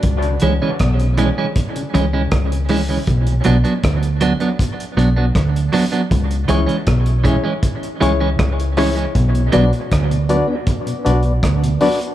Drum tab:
HH |xxx-xxx-xxx-xxo-|xxxxxxxxxxx-xxox|xxxxxxx-xxx-xxox|xxxxxxx-xxxxxxox|
SD |----r-------r---|----r-------r---|----r-------r---|----r-------r---|
BD |o---o---o---o---|o---o---o---o---|o---o-o-o---o---|o---o---o---o---|